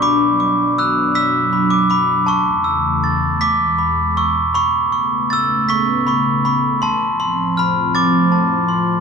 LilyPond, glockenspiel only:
\new Staff \with { instrumentName = "Glockenspiel" } { \time 6/8 \key a \major \tempo 4. = 53 << { b''8 d'''8 fis'''8 b'''8 b''8 d'''8 | cis'''8 e'''8 a'''8 b'''8 b''8 e'''8 | b''8 cis'''8 a'''8 b'''8 b''8 cis'''8 | a''8 c'''8 f'''8 a'''8 a''8 c'''8 | } \\ { d'''4 e'''8 e'''8. d'''16 b''8 | a''4. d'''4 cis'''8 | cis'''4 e'''8 cis'''8 cis'''8 b''8 | c'''4 b''8 d'''4 r8 | } >> }